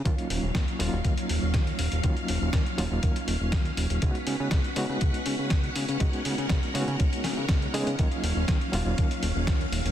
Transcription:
0.05 D#2 F#3 A#3 C#4 D#4 F4 F5, kick, closed hi-hat
0.18 closed hi-hat
0.30 D#1, open hi-hat
0.43 D#1
0.55 D#2, kick, snare, closed hi-hat
0.68 closed hi-hat
0.79 D#1 F#3 A#3 C#4 D#4 F4, open hi-hat
0.93 D#1
1.05 D#2, kick, closed hi-hat
1.18 closed hi-hat
1.29 D#1, open hi-hat
1.43 D#1
1.54 D#2, kick, snare, closed hi-hat
1.67 closed hi-hat
1.79 D#1, open hi-hat
1.92 D#1, closed hi-hat
2.03 D#2 F#3 A#3 C#4 D#4 F4, kick, closed hi-hat
2.17 closed hi-hat
2.28 D#1, open hi-hat
2.42 D#1
2.53 D#2, kick, snare, closed hi-hat
2.66 closed hi-hat
2.77 D#1 F#3 A#3 C#4 D#4 F4, open hi-hat
2.91 D#1
3.03 D#2, kick, closed hi-hat
3.16 closed hi-hat
3.28 D#1, open hi-hat
3.41 D#1
3.52 D#2, kick, snare, closed hi-hat
3.65 closed hi-hat
3.77 D#1, open hi-hat
3.90 D#1, closed hi-hat
4.02 C#2 G#3 B3 C#4 D#4 F#4 B4 F#5, kick, closed hi-hat
4.15 closed hi-hat
4.27 C#3, open hi-hat
4.40 C#3
4.51 C#2, kick, snare, closed hi-hat
4.64 closed hi-hat
4.76 C#3 G#3 B3 C#4 D#4 F#4, open hi-hat
4.89 C#3
5.01 C#2, kick, closed hi-hat
5.14 closed hi-hat
5.26 C#3, open hi-hat
5.39 C#3
5.50 C#2, kick, snare, closed hi-hat
5.64 closed hi-hat
5.76 C#3, open hi-hat
5.89 C#3, closed hi-hat
6.00 C#2 G#3 B3 C#4 D#4 F#4 A#4, kick, closed hi-hat
6.13 closed hi-hat
6.25 C#3, open hi-hat
6.38 C#3, closed hi-hat
6.49 C#2, kick, snare, closed hi-hat
6.63 closed hi-hat
6.74 C#3 G#3 B3 C#4 D#4 F#4, open hi-hat
6.87 C#3, closed hi-hat
7.00 C#2, kick, closed hi-hat
7.13 closed hi-hat
7.24 C#3, snare, open hi-hat
7.37 C#3
7.49 C#2, kick, snare, closed hi-hat
7.62 closed hi-hat
7.74 C#3 G#3 B3 C#4 D#4 G#4, open hi-hat
7.87 C#3, closed hi-hat
7.98 D#2 F#3 A#3 C#4 D#4 F4 F5, kick, closed hi-hat
8.12 closed hi-hat
8.23 D#1, open hi-hat
8.36 D#1
8.48 D#2, kick, snare, closed hi-hat
8.61 closed hi-hat
8.72 D#1 F#3 A#3 C#4 D#4 F4, open hi-hat
8.86 D#1
8.98 D#2, kick, closed hi-hat
9.11 closed hi-hat
9.23 D#1, open hi-hat
9.36 D#1
9.47 D#2, kick, snare, closed hi-hat
9.61 closed hi-hat
9.72 D#1, open hi-hat
9.85 D#1, closed hi-hat

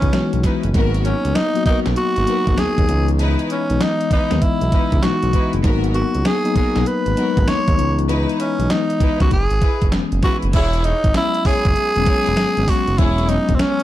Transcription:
Already playing: E3 G#3 B3 C#4 D#4
0.02 C#2, kick, closed hi-hat
0.13 B1 E3 G#3 B3 F#4, snare, closed hi-hat
0.33 B1, closed hi-hat
0.43 D#4 E4 B4, kick, snare, closed hi-hat
0.63 F#1, closed hi-hat
0.74 G#1 F#3 A#3 B3 D#4 F#4 A#4, kick, closed hi-hat
0.94 closed hi-hat
1.05 C#4, closed hi-hat
1.25 C#2, closed hi-hat
1.35 D#4, snare, closed hi-hat
1.55 F#3 A#3 B3 F#4, closed hi-hat
1.66 B1 B3 D#4 F#4 A#4, kick, closed hi-hat
1.86 B1, snare, closed hi-hat
1.96 F#4, closed hi-hat
2.16 G#1, closed hi-hat
2.27 F#3 A#3 B3 D#4 F#4 A#4, closed hi-hat
2.47 G#1, kick, closed hi-hat
2.58 D#2 G#4, snare, closed hi-hat
2.78 D#2, kick, closed hi-hat
2.88 C#2 E3 G#3 B3 D#4, closed hi-hat
3.08 closed hi-hat
3.19 D#4 E4 B4, closed hi-hat
3.39 closed hi-hat
3.50 C#4, closed hi-hat
3.70 B1 E3 G#3 B3 D#4, closed hi-hat
3.81 D#4, snare, closed hi-hat
4.01 closed hi-hat
4.11 D#2 D#4 E4 B4, kick, closed hi-hat
4.30 D#2 E3 G#3 B3 D#5, snare, closed hi-hat
4.42 E4, kick, closed hi-hat
4.61 B1, closed hi-hat
4.72 D#4 E4 B4, kick, closed hi-hat
4.92 C#2, kick, closed hi-hat
5.03 B1 E3 G#3 B3 D#4 F#4, snare, closed hi-hat
5.23 B1, closed hi-hat
5.33 D#4 E4 B4, kick, closed hi-hat
5.53 F#1, closed hi-hat
5.64 G#1 F#3 A#3 B3 D#4 F#4 A#4, kick, closed hi-hat
5.84 closed hi-hat
5.94 F#4, closed hi-hat
6.15 C#2, closed hi-hat
6.25 G#4, snare, closed hi-hat
6.44 F#3 A#3 B3 D#4, closed hi-hat
6.56 B1 B3 F#4 G#4 A#4, kick, closed hi-hat
6.76 B1, snare, closed hi-hat
6.86 B4, closed hi-hat
7.06 G#1, closed hi-hat
7.17 F#3 G#3 B3 D#4 F#4 A#4, closed hi-hat
7.37 G#1, kick, closed hi-hat
7.47 D#2 C#5, snare, closed hi-hat
7.68 D#2, kick, closed hi-hat
7.78 C#2 E3 G#3 B3 D#4, closed hi-hat
7.99 closed hi-hat
8.09 D#4 E4 B4, closed hi-hat
8.29 closed hi-hat
8.40 C#4, closed hi-hat
8.59 B1 E3 G#3 B3 D#4, closed hi-hat
8.70 D#4, snare, closed hi-hat
8.90 closed hi-hat
9.00 C#2 D#4 E4 B4, kick, closed hi-hat
9.20 C#2 E3 G#3 B3 D#4 F#4, kick, snare, closed hi-hat
9.31 F#1 G#4, kick, closed hi-hat
9.50 G#1, closed hi-hat
9.62 E4 G#4 B4, kick, closed hi-hat
9.82 F#1, kick, closed hi-hat
9.92 F#1 E3 G#3 B3 C#4, snare, closed hi-hat
10.12 F#1, closed hi-hat
10.23 E4 F#4 G#4 B4, kick, snare, closed hi-hat
10.42 F#1, closed hi-hat
10.53 E1 E4 G#4 C#5, kick, closed hi-hat, crash
10.73 closed hi-hat
10.84 D#4, closed hi-hat
11.04 G#1, kick, closed hi-hat
11.14 F#3 G#3 B3 C#4 E4, snare, closed hi-hat
11.34 closed hi-hat
11.45 F#1 E4 G#4 C#5, kick, open hi-hat
11.65 F#1, kick, closed hi-hat
11.76 closed hi-hat
11.96 E1 F#3 G#3 B3 C#4, closed hi-hat
12.06 E4 G#4 C#5, kick, closed hi-hat
12.26 E1, closed hi-hat
12.37 G#1, snare, closed hi-hat
12.57 G#1 F#3 G#3 B3 C#4, closed hi-hat
12.68 F#4, kick, snare, open hi-hat
12.87 F#1, closed hi-hat
12.98 E1 E4 G#4 C#5, kick, closed hi-hat
13.18 closed hi-hat
13.29 F#3 G#3 B3 C#4 D#4, closed hi-hat
13.49 E1, kick, closed hi-hat
13.55 C4
13.59 C#4, snare, closed hi-hat
13.80 closed hi-hat

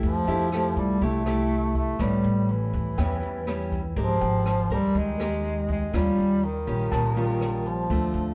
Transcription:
Already playing: A3 E4 G4
0.03 F2 F3, kick, closed hi-hat
0.27 F2 A3 E4 G4 E5, closed hi-hat
0.52 A3 E4 G4, cross-stick, closed hi-hat
0.77 C2 G3, kick, closed hi-hat
1.01 C2 C3 A3 E4 G4, kick, closed hi-hat
1.26 A3 E4 G4, cross-stick, closed hi-hat
1.51 closed hi-hat
1.75 A3, kick, closed hi-hat
1.99 A1 A2 G3 B3 C#4, kick, cross-stick, closed hi-hat
2.24 A1, closed hi-hat
2.49 E3, closed hi-hat
2.73 E2, kick, closed hi-hat
2.98 E2 E3 G3 B3 C#4 G5, kick, cross-stick, closed hi-hat
3.23 closed hi-hat
3.47 G3 B3 C#4, cross-stick, closed hi-hat
3.72 kick, closed hi-hat
3.96 G#1 F3 G#3 C4 G4 A#4, kick, closed hi-hat
4.21 G#1 G5, closed hi-hat
4.46 cross-stick, closed hi-hat
4.70 D#2 G3 C4 G4 A#4, kick, closed hi-hat
4.95 D#2 D#3 G#3, kick, closed hi-hat
5.19 C4 G4 A#4, cross-stick, closed hi-hat
5.44 closed hi-hat
5.69 G#3, kick, closed hi-hat
5.93 D#2 D#3 G3 C#4 F4, kick, cross-stick, closed hi-hat
6.18 D#2, closed hi-hat
6.43 D#3, closed hi-hat
6.67 A#1 G3 C#4 F4, closed hi-hat
6.92 A#1 A#2 A5, kick, cross-stick, closed hi-hat
7.16 G3 C#4 F4, closed hi-hat
7.41 cross-stick, closed hi-hat
7.66 F3, closed hi-hat
7.90 D2 D3 A3 C4 F4, kick, closed hi-hat
8.14 D2, closed hi-hat

